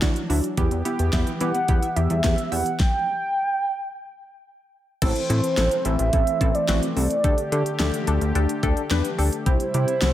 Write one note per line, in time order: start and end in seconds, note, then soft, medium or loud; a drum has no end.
0.00 0.13 D2 loud
0.00 2.76 E3 medium
0.00 0.53 F#3 medium
0.00 0.53 D4 medium
0.00 0.21 D4 medium
0.00 0.11 D4 medium
0.00 0.21 E4 medium
0.00 0.21 F#4 loud
0.00 kick loud
0.00 snare loud
0.00 closed hi-hat medium
0.16 closed hi-hat medium
0.29 0.41 D2 loud
0.29 0.48 D4 medium
0.29 0.48 E4 medium
0.29 0.48 F#4 loud
0.29 0.38 E5 medium
0.29 open hi-hat medium
0.44 closed hi-hat medium
0.57 0.69 E2 loud
0.57 0.66 E3 medium
0.57 2.77 B3 medium
0.57 0.76 B3 loud
0.57 0.76 E4 loud
0.57 2.77 G4 medium
0.57 0.76 G4 loud
0.57 kick loud
0.57 closed hi-hat medium
0.71 0.82 E2 medium
0.71 closed hi-hat medium
0.85 1.04 B3 loud
0.85 0.94 B3 medium
0.85 1.04 E4 medium
0.85 1.04 G4 loud
0.85 closed hi-hat medium
0.99 1.10 E2 loud
0.99 1.08 G4 medium
0.99 closed hi-hat medium
1.13 1.24 E2 loud
1.13 1.32 B3 medium
1.13 1.32 E4 medium
1.13 1.32 G4 loud
1.13 1.22 E5 medium
1.13 kick loud
1.13 snare loud
1.13 closed hi-hat medium
1.27 1.36 E3 medium
1.27 closed hi-hat medium
1.41 1.52 E3 loud
1.41 1.49 G3 medium
1.41 1.60 B3 loud
1.41 1.60 E4 medium
1.41 1.60 G4 loud
1.41 1.97 F#5 loud
1.41 closed hi-hat medium
1.55 1.63 B3 medium
1.55 closed hi-hat soft
1.68 1.80 E2 loud
1.68 1.87 B3 medium
1.68 1.87 E4 medium
1.68 1.87 G4 loud
1.68 1.77 G4 loud
1.68 kick loud
1.68 closed hi-hat medium
1.83 1.91 E5 medium
1.83 closed hi-hat medium
1.96 2.07 E2 medium
1.96 2.05 E3 medium
1.96 2.15 B3 medium
1.96 2.15 E4 medium
1.96 2.15 G4 medium
1.96 2.53 E5 loud
1.96 closed hi-hat medium
2.10 2.21 E2 loud
2.10 2.19 G3 medium
2.10 closed hi-hat soft
2.24 2.35 E2 loud
2.24 2.33 B3 medium
2.24 2.43 B3 medium
2.24 2.43 E4 medium
2.24 2.43 G4 medium
2.24 kick loud
2.24 snare loud
2.24 closed hi-hat medium
2.38 closed hi-hat medium
2.52 2.63 E2 loud
2.52 2.71 B3 medium
2.52 2.71 E4 medium
2.52 2.71 G4 medium
2.52 2.60 E5 medium
2.52 2.79 F#5 loud
2.52 open hi-hat medium
2.66 closed hi-hat medium
2.79 4.42 G5 loud
2.79 kick loud
2.79 snare medium
5.02 5.13 A1 loud
5.02 7.22 E3 medium
5.02 9.42 A3 medium
5.02 7.22 C4 medium
5.02 5.21 C4 loud
5.02 5.21 E4 medium
5.02 5.21 A4 loud
5.02 5.87 C5 loud
5.02 kick loud
5.02 closed hi-hat medium
5.02 crash loud
5.16 closed hi-hat medium
5.30 5.41 A2 loud
5.30 5.49 C4 medium
5.30 5.49 E4 medium
5.30 5.49 A4 medium
5.30 closed hi-hat medium
5.44 closed hi-hat medium
5.57 5.69 A1 loud
5.57 5.76 C4 medium
5.57 5.76 E4 medium
5.57 5.76 A4 medium
5.57 snare loud
5.57 closed hi-hat medium
5.71 closed hi-hat medium
5.85 5.96 A1 loud
5.85 6.04 C4 medium
5.85 6.04 E4 medium
5.85 6.04 A4 medium
5.85 6.56 E5 loud
5.85 closed hi-hat medium
5.99 6.10 A1 medium
5.99 closed hi-hat medium
6.13 6.24 A1 loud
6.13 6.32 C4 medium
6.13 6.32 E4 medium
6.13 6.32 A4 medium
6.13 kick loud
6.13 closed hi-hat medium
6.27 closed hi-hat medium
6.41 6.52 A1 loud
6.41 6.60 C4 loud
6.41 6.60 E4 medium
6.41 6.60 A4 loud
6.41 kick medium
6.41 closed hi-hat medium
6.55 6.96 D5 loud
6.55 closed hi-hat soft
6.69 6.80 A1 loud
6.69 6.88 C4 loud
6.69 6.88 E4 medium
6.69 6.88 F#4 loud
6.69 snare loud
6.69 closed hi-hat medium
6.83 closed hi-hat medium
6.96 7.07 C2 medium
6.96 7.15 C4 medium
6.96 7.15 E4 medium
6.96 7.15 A4 medium
6.96 7.76 D5 loud
6.96 open hi-hat medium
7.11 closed hi-hat medium
7.24 7.35 D2 loud
7.24 9.44 D3 medium
7.24 7.43 D4 loud
7.24 9.44 G4 medium
7.24 7.43 G4 medium
7.24 7.43 A4 loud
7.24 kick loud
7.24 closed hi-hat medium
7.38 closed hi-hat medium
7.52 7.63 D3 loud
7.52 7.71 D4 medium
7.52 7.71 G4 medium
7.52 7.71 A4 medium
7.52 closed hi-hat medium
7.66 closed hi-hat medium
7.80 7.91 D2 loud
7.80 7.98 D4 medium
7.80 7.99 G4 medium
7.80 7.98 A4 loud
7.80 snare loud
7.80 closed hi-hat medium
7.94 closed hi-hat medium
8.07 8.19 D2 loud
8.07 8.26 D4 medium
8.07 8.26 G4 medium
8.07 8.26 A4 loud
8.07 closed hi-hat medium
8.21 8.32 D2 loud
8.21 closed hi-hat soft
8.35 8.46 D2 loud
8.35 8.54 D4 medium
8.35 8.54 G4 medium
8.35 8.54 A4 loud
8.35 closed hi-hat medium
8.49 closed hi-hat medium
8.63 8.74 D2 loud
8.63 8.82 D4 loud
8.63 8.82 G4 loud
8.63 8.82 A4 loud
8.63 kick medium
8.63 closed hi-hat medium
8.77 closed hi-hat soft
8.91 9.02 E2 medium
8.91 9.10 D4 loud
8.91 9.10 G4 loud
8.91 9.10 B4 loud
8.91 snare loud
8.91 closed hi-hat medium
9.05 closed hi-hat medium
9.18 9.30 D2 loud
9.18 9.37 D4 medium
9.18 9.37 G4 medium
9.18 9.37 A4 loud
9.18 open hi-hat medium
9.33 closed hi-hat medium
9.46 9.57 C2 loud
9.46 10.13 C3 medium
9.46 10.13 G3 medium
9.46 9.65 C4 loud
9.46 9.65 E4 medium
9.46 10.13 E4 medium
9.46 9.65 G4 loud
9.46 10.13 C5 loud
9.46 kick loud
9.46 closed hi-hat medium
9.60 closed hi-hat medium
9.74 9.85 C3 loud
9.74 9.93 C4 medium
9.74 9.93 E4 medium
9.74 9.93 G4 medium
9.74 closed hi-hat medium
9.88 closed hi-hat medium
10.02 10.13 C2 loud
10.02 10.13 C4 medium
10.02 10.13 E4 medium
10.02 10.13 F#4 medium
10.02 snare loud
10.02 closed hi-hat medium